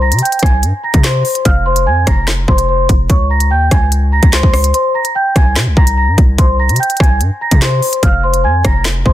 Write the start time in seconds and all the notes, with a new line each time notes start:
Already playing: C2
0.01 A#5 A#6
0.12 C3, closed hi-hat
0.19 G5, closed hi-hat
0.23 G6, closed hi-hat
0.32 closed hi-hat
0.39 C2 G#5, kick, cross-stick, closed hi-hat
0.46 closed hi-hat
0.63 G2, closed hi-hat
0.84 A#5 A#6
0.94 C3, kick, closed hi-hat
1.04 C5 C6, snare, clap, closed hi-hat
1.25 open hi-hat
1.35 closed hi-hat
1.45 F1 F5 F6, kick, closed hi-hat
1.66 C5 C6
1.76 closed hi-hat
1.86 F2 G#5 G#6
2.07 F1 A#5 A#6, kick, cross-stick, closed hi-hat
2.28 snare, clap, closed hi-hat
2.48 F1 C5 C6, kick
2.58 closed hi-hat
2.69 C5 C6
2.89 F1, kick, closed hi-hat
3.10 C#2 C#5 C#6, kick, closed hi-hat
3.30 A#5 A#6
3.40 closed hi-hat
3.51 D#2 G5 G6
3.71 C#2 G#5, kick, cross-stick, closed hi-hat
3.92 closed hi-hat
4.12 A#5 A#6
4.23 C#2, kick, closed hi-hat
4.33 C5 C6, snare, clap, closed hi-hat
4.43 C#2, kick
4.54 cross-stick, open hi-hat
4.64 closed hi-hat
4.74 C5 C6, closed hi-hat
4.95 A#5 A#6
5.05 closed hi-hat
5.15 G5 G6
5.35 C2 G#5, kick, cross-stick, closed hi-hat
5.56 C3, snare, clap, closed hi-hat
5.67 C2
5.77 C2 A#5 A#6, kick
5.87 closed hi-hat
5.97 A#5 A#6
6.08 G2
6.18 C2, kick, closed hi-hat
6.38 C2 C5 C6, kick, closed hi-hat
6.59 A#5 A#6
6.69 C3, closed hi-hat
6.76 G5, closed hi-hat
6.80 G6, closed hi-hat
6.90 closed hi-hat
6.97 C2 G#5, kick, cross-stick, closed hi-hat
7.01 G#6, closed hi-hat
7.21 G2, closed hi-hat
7.41 A#5 A#6
7.51 C3, kick, closed hi-hat
7.62 C5 C6, snare, clap, closed hi-hat
7.82 open hi-hat
7.93 closed hi-hat
8.03 F1 F5 F6, kick, closed hi-hat
8.23 C5 C6
8.34 closed hi-hat
8.44 F2 G#5 G#6
8.65 F1 A#5 A#6, kick, cross-stick, closed hi-hat
8.85 snare, clap, closed hi-hat
9.05 F1 C5 C6, kick